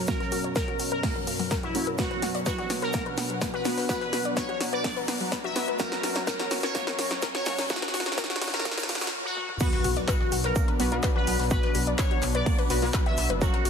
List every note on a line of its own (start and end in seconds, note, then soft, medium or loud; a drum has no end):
0.00 1.95 F#2 medium
0.00 9.13 B2 medium
0.00 9.09 F#3 medium
0.00 9.13 F#3 medium
0.00 1.95 C#4 medium
0.00 1.95 A#4 medium
0.00 1.95 C#5 medium
0.07 1.72 F#3 medium
0.07 0.16 A#3 loud
0.07 1.72 C#4 medium
0.07 1.72 F#4 medium
0.07 0.37 A#4 loud
0.07 kick loud
0.07 snare medium
0.07 closed hi-hat soft
0.07 shaker medium
0.20 0.23 A#4 medium
0.20 snare soft
0.20 closed hi-hat soft
0.32 0.35 F#4 medium
0.32 open hi-hat loud
0.32 shaker medium
0.44 0.49 C#5 medium
0.44 closed hi-hat soft
0.55 0.77 A#4 medium
0.55 0.64 A#4 loud
0.55 kick loud
0.55 snare loud
0.55 snare medium
0.55 closed hi-hat soft
0.55 shaker medium
0.68 0.73 F#4 medium
0.68 closed hi-hat soft
0.79 0.85 F#4 medium
0.79 open hi-hat loud
0.79 shaker medium
0.92 1.13 A#4 medium
0.92 0.99 A#4 medium
0.92 closed hi-hat soft
1.03 1.07 A#3 medium
1.03 kick loud
1.03 snare medium
1.03 closed hi-hat soft
1.03 open hi-hat medium
1.16 1.19 A#4 medium
1.16 closed hi-hat soft
1.27 1.32 A#3 medium
1.27 open hi-hat loud
1.27 shaker medium
1.39 1.42 F#3 medium
1.39 open hi-hat medium
1.50 1.59 A#4 loud
1.50 kick loud
1.50 snare loud
1.50 snare medium
1.50 closed hi-hat soft
1.50 shaker medium
1.63 1.85 E4 loud
1.63 1.68 F#4 medium
1.63 closed hi-hat soft
1.75 1.96 F#3 medium
1.75 1.80 A#3 medium
1.75 1.96 C#4 medium
1.75 1.96 F#4 loud
1.75 open hi-hat loud
1.75 shaker medium
1.87 1.94 A#4 medium
1.87 closed hi-hat soft
1.98 5.76 B2 medium
1.98 2.06 B3 loud
1.98 3.63 B3 medium
1.98 5.76 D4 medium
1.98 3.63 F#4 medium
1.98 2.27 F#4 loud
1.98 3.87 B4 medium
1.98 3.63 B4 medium
1.98 5.76 F#5 medium
1.98 kick loud
1.98 snare medium
1.98 closed hi-hat soft
1.98 riser medium
1.98 shaker medium
2.11 2.14 B4 medium
2.11 snare soft
2.11 closed hi-hat soft
2.22 2.26 F#4 medium
2.22 snare medium
2.22 open hi-hat loud
2.22 shaker medium
2.35 2.40 D5 medium
2.35 closed hi-hat soft
2.46 2.68 F#4 loud
2.46 2.54 B4 loud
2.46 kick loud
2.46 snare medium
2.46 snare loud
2.46 closed hi-hat soft
2.46 shaker medium
2.58 2.63 F#4 medium
2.58 snare soft
2.58 closed hi-hat soft
2.70 2.75 F#4 medium
2.70 snare medium
2.70 open hi-hat loud
2.70 shaker medium
2.82 3.04 A#4 medium
2.82 2.90 B4 medium
2.82 snare soft
2.82 closed hi-hat soft
2.93 2.97 A#3 medium
2.93 kick loud
2.93 snare medium
2.93 closed hi-hat soft
2.93 shaker medium
3.06 3.09 B4 medium
3.06 closed hi-hat soft
3.18 3.23 B3 medium
3.18 snare medium
3.18 open hi-hat loud
3.18 shaker medium
3.30 3.33 F#3 medium
3.30 closed hi-hat soft
3.41 3.49 B4 loud
3.41 kick loud
3.41 snare loud
3.41 snare medium
3.41 closed hi-hat soft
3.41 shaker medium
3.54 3.59 F#4 medium
3.54 3.75 B4 medium
3.54 closed hi-hat soft
3.65 3.70 B3 medium
3.65 3.86 B3 medium
3.65 3.86 F#4 medium
3.65 3.86 B4 loud
3.65 snare medium
3.65 open hi-hat loud
3.65 shaker medium
3.77 3.85 B4 medium
3.77 snare medium
3.77 open hi-hat medium
3.89 3.97 B3 loud
3.89 5.53 B3 medium
3.89 5.53 F#4 medium
3.89 5.53 B4 medium
3.89 4.18 B4 loud
3.89 9.09 A#5 medium
3.89 kick loud
3.89 snare medium
3.89 shaker medium
4.01 4.04 B4 medium
4.01 snare soft
4.01 closed hi-hat soft
4.13 4.16 F#4 medium
4.13 snare medium
4.13 open hi-hat loud
4.13 shaker medium
4.25 4.30 D5 medium
4.25 closed hi-hat soft
4.36 4.44 B4 loud
4.36 4.58 C#5 loud
4.36 kick loud
4.36 snare loud
4.36 snare medium
4.36 closed hi-hat soft
4.36 shaker medium
4.49 4.54 F#4 medium
4.49 closed hi-hat soft
4.61 4.66 F#4 medium
4.61 snare medium
4.61 open hi-hat loud
4.61 shaker medium
4.73 4.80 B4 medium
4.73 4.94 D5 medium
4.73 closed hi-hat soft
4.84 4.87 A#3 medium
4.84 kick loud
4.84 snare medium
4.84 closed hi-hat soft
4.84 open hi-hat medium
4.97 5.00 B4 medium
4.97 closed hi-hat soft
5.08 5.13 B3 medium
5.08 snare medium
5.08 open hi-hat loud
5.08 shaker medium
5.20 5.23 F#3 medium
5.20 open hi-hat medium
5.32 5.40 B4 loud
5.32 kick loud
5.32 snare medium
5.32 snare loud
5.32 closed hi-hat soft
5.32 shaker medium
5.44 5.49 F#4 medium
5.44 5.66 E5 medium
5.44 closed hi-hat soft
5.56 5.77 B3 medium
5.56 5.61 B3 medium
5.56 5.77 F#4 medium
5.56 5.77 B4 loud
5.56 snare medium
5.56 open hi-hat loud
5.56 shaker medium
5.68 5.75 B4 medium
5.68 closed hi-hat soft
5.79 9.10 F#2 medium
5.79 7.43 F#3 medium
5.79 5.87 A#3 loud
5.79 7.43 C#4 medium
5.79 9.10 C#4 medium
5.79 7.43 F#4 medium
5.79 6.08 A#4 loud
5.79 9.10 C#5 medium
5.79 kick loud
5.79 snare medium
5.79 closed hi-hat soft
5.79 shaker medium
5.92 5.95 A#4 medium
5.92 snare medium
5.92 snare soft
5.92 closed hi-hat soft
6.03 6.06 F#4 medium
6.03 snare medium
6.03 open hi-hat loud
6.03 shaker medium
6.15 6.20 C#5 medium
6.15 snare medium
6.15 closed hi-hat soft
6.27 6.35 A#4 loud
6.27 6.49 A#4 loud
6.27 kick loud
6.27 snare loud
6.27 snare medium
6.27 closed hi-hat soft
6.27 shaker medium
6.39 6.44 F#4 medium
6.39 snare medium
6.39 snare soft
6.39 closed hi-hat soft
6.51 6.56 F#4 medium
6.51 snare medium
6.51 open hi-hat loud
6.51 shaker medium
6.63 6.71 A#4 medium
6.63 6.85 C#5 loud
6.63 snare medium
6.63 snare soft
6.63 closed hi-hat soft
6.75 6.78 A#3 medium
6.75 kick loud
6.75 snare medium
6.75 closed hi-hat soft
6.75 shaker medium
6.87 6.90 A#4 medium
6.87 snare medium
6.87 closed hi-hat soft
6.99 7.04 A#3 medium
6.99 snare loud
6.99 open hi-hat loud
6.99 shaker medium
7.11 7.14 F#3 medium
7.11 snare medium
7.11 closed hi-hat soft
7.22 7.30 A#4 loud
7.22 kick loud
7.22 snare loud
7.22 closed hi-hat soft
7.22 shaker medium
7.35 7.40 F#4 medium
7.35 7.56 C#5 loud
7.35 snare medium
7.35 closed hi-hat soft
7.46 7.67 F#3 medium
7.46 7.51 A#3 medium
7.46 7.67 C#4 medium
7.46 7.67 F#4 loud
7.46 snare loud
7.46 open hi-hat loud
7.46 shaker medium
7.58 7.66 A#4 medium
7.58 snare medium
7.58 snare loud
7.58 open hi-hat medium
7.58 shaker medium
7.69 9.13 F#3 medium
7.69 7.78 A#3 loud
7.69 9.13 C#4 medium
7.69 9.13 F#4 medium
7.69 7.99 F#4 loud
7.69 kick loud
7.69 snare loud
7.69 closed hi-hat soft
7.69 shaker medium
7.76 snare medium
7.82 7.85 A#4 medium
7.82 snare medium
7.82 snare soft
7.82 closed hi-hat soft
7.88 snare medium
7.94 7.97 F#4 medium
7.94 snare loud
7.94 open hi-hat loud
7.94 shaker medium
8.00 snare medium
8.06 8.11 C#5 medium
8.06 snare medium
8.06 closed hi-hat soft
8.12 snare medium
8.17 8.39 F#4 loud
8.17 8.25 A#4 loud
8.17 kick loud
8.17 snare loud
8.17 closed hi-hat soft
8.17 shaker medium
8.24 snare medium
8.30 8.35 F#4 medium
8.30 snare medium
8.30 closed hi-hat soft
8.36 snare medium
8.41 8.47 F#4 medium
8.41 snare loud
8.41 open hi-hat loud
8.41 shaker medium
8.48 snare medium
8.54 8.61 A#4 medium
8.54 8.75 A#4 medium
8.54 snare medium
8.54 closed hi-hat soft
8.60 snare medium
8.65 8.68 A#3 medium
8.65 kick loud
8.65 snare loud
8.65 closed hi-hat soft
8.65 shaker medium
8.71 snare medium
8.78 8.80 A#4 medium
8.78 snare loud
8.78 snare medium
8.78 closed hi-hat soft
8.78 shaker medium
8.83 snare medium
8.88 8.94 A#3 medium
8.88 snare loud
8.88 open hi-hat loud
8.88 shaker medium
8.95 snare loud
9.01 9.04 F#3 medium
9.01 snare medium
9.01 snare loud
9.01 open hi-hat medium
9.01 shaker medium
9.07 snare medium
9.25 9.46 F#4 loud
9.37 high tom medium
9.49 mid tom medium
9.60 13.70 B2 medium
9.60 13.70 F#3 medium
9.60 9.68 B3 loud
9.60 13.38 B3 medium
9.60 10.77 B3 medium
9.60 13.38 D4 medium
9.60 9.89 F#4 loud
9.60 10.77 F#4 medium
9.60 10.77 B4 medium
9.60 kick loud
9.60 closed hi-hat soft
9.60 crash loud
9.60 impact medium
9.60 shaker medium
9.73 9.76 B4 medium
9.73 snare soft
9.73 closed hi-hat soft
9.84 10.04 B1 loud
9.84 9.87 F#4 medium
9.84 open hi-hat loud
9.84 shaker medium
9.96 10.01 D5 medium
9.96 closed hi-hat soft
10.08 10.30 F#4 medium
10.08 10.16 B4 loud
10.08 kick loud
10.08 snare loud
10.08 clap loud
10.08 closed hi-hat soft
10.08 shaker medium
10.20 10.25 F#4 medium
10.20 snare soft
10.32 10.52 B1 loud
10.32 10.37 F#4 medium
10.32 open hi-hat loud
10.32 shaker medium
10.44 10.66 A#4 medium
10.44 10.52 B4 medium
10.44 snare soft
10.44 closed hi-hat soft
10.56 10.59 A#3 medium
10.56 kick loud
10.56 closed hi-hat soft
10.56 shaker medium
10.68 10.71 B4 medium
10.68 closed hi-hat soft
10.80 10.99 B1 loud
10.80 10.89 B3 loud
10.80 10.85 B3 medium
10.80 10.89 F#4 medium
10.80 10.89 B4 loud
10.80 open hi-hat loud
10.80 shaker medium
10.92 10.95 F#3 medium
10.92 11.48 B3 medium
10.92 11.48 F#4 medium
10.92 11.48 B4 medium
10.92 closed hi-hat soft
11.03 11.11 B4 loud
11.03 kick loud
11.03 snare loud
11.03 clap loud
11.03 closed hi-hat soft
11.03 shaker medium
11.16 11.21 F#4 medium
11.16 11.37 B4 loud
11.27 11.37 B1 medium
11.27 11.32 B3 medium
11.27 open hi-hat loud
11.27 shaker medium
11.39 11.59 B1 medium
11.39 11.47 B4 medium
11.39 snare medium
11.39 open hi-hat medium
11.50 12.68 B3 medium
11.50 11.59 B3 loud
11.50 12.68 F#4 medium
11.50 12.68 B4 medium
11.50 11.80 B4 loud
11.50 kick loud
11.50 closed hi-hat soft
11.50 shaker medium
11.63 11.66 B4 medium
11.63 snare soft
11.63 closed hi-hat soft
11.75 11.95 B1 loud
11.75 11.78 F#4 medium
11.75 open hi-hat loud
11.75 shaker medium
11.87 11.92 D5 medium
11.87 closed hi-hat soft
11.98 12.06 B4 loud
11.98 12.20 C#5 loud
11.98 kick loud
11.98 snare loud
11.98 clap loud
11.98 closed hi-hat soft
11.98 shaker loud
12.11 12.16 F#4 medium
12.11 closed hi-hat soft
12.22 12.42 B1 medium
12.22 12.28 F#4 medium
12.22 clap medium
12.22 open hi-hat loud
12.22 shaker medium
12.35 12.42 B4 medium
12.35 12.56 D5 medium
12.35 closed hi-hat soft
12.46 12.49 A#3 medium
12.46 kick loud
12.46 closed hi-hat soft
12.46 open hi-hat medium
12.59 12.61 B4 medium
12.59 closed hi-hat soft
12.70 12.90 B1 loud
12.70 12.75 B3 medium
12.70 12.79 B3 loud
12.70 12.79 F#4 medium
12.70 12.79 B4 loud
12.70 open hi-hat loud
12.70 shaker medium
12.82 12.85 F#3 medium
12.82 13.39 B3 medium
12.82 13.39 F#4 medium
12.82 13.39 B4 medium
12.82 open hi-hat medium
12.94 13.02 B4 loud
12.94 kick loud
12.94 snare loud
12.94 clap loud
12.94 closed hi-hat soft
12.94 shaker medium
13.06 13.11 F#4 medium
13.06 13.27 E5 loud
13.06 closed hi-hat soft
13.17 13.28 B1 medium
13.17 13.23 B3 medium
13.17 open hi-hat loud
13.17 shaker medium
13.30 13.49 F#1 medium
13.30 13.37 B4 medium
13.41 13.70 F#3 medium
13.41 13.49 A#3 loud
13.41 13.70 A#3 medium
13.41 13.70 C#4 medium
13.41 13.70 F#4 medium
13.41 13.70 F#4 loud
13.41 kick loud
13.41 closed hi-hat soft
13.41 shaker medium
13.53 13.57 A#4 medium
13.53 snare soft
13.53 closed hi-hat soft
13.65 13.70 F#1 loud
13.65 13.68 F#4 medium
13.65 open hi-hat loud
13.65 shaker medium